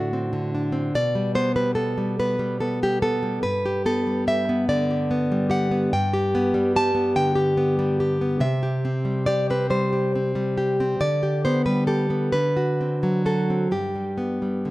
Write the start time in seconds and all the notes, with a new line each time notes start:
Already playing: A2 D3 A3 D4 F#4
0.13 C4
0.33 D3
0.55 D4
0.72 C4
0.95 B2 D5
1.15 G3
1.35 B3 C5
1.56 G3 B4
1.75 B3 A4
1.98 G3
2.19 B3 B4
2.39 G3
2.60 B3 A4
2.83 G3 G4
3.02 B3 A4
3.23 G3
3.43 G2 B4
3.66 G4
3.86 B3 A4
4.07 G3
4.27 G4 E5
4.49 B3
4.69 D3 D5
4.91 G4
5.11 B3
5.32 G3
5.50 G4 F#5
5.71 B3
5.93 G2 G5
6.13 G4
6.35 B3
6.54 G3
6.76 G4 A5
6.95 B3
7.16 D3 G5
7.35 G4
7.57 B3
7.79 G3
8.00 G4
8.21 B3
8.40 C3 E5
8.63 G4
8.85 C4
9.05 G3
9.26 G4 D5
9.50 C4 B4
9.70 G3 C5
9.93 G4
10.15 C4
10.35 G3
10.58 G4
10.80 C4
11.00 D3 D5
11.23 G4
11.45 B3 C5
11.66 G3 B4
11.87 G4 A4
12.10 B3
12.32 D3 B4
12.57 F#4
12.81 C4
13.03 F#3
13.26 F#4 A4
13.50 C4
13.71 G2 G4
13.95 G3
14.18 B3
14.42 G3
14.65 D3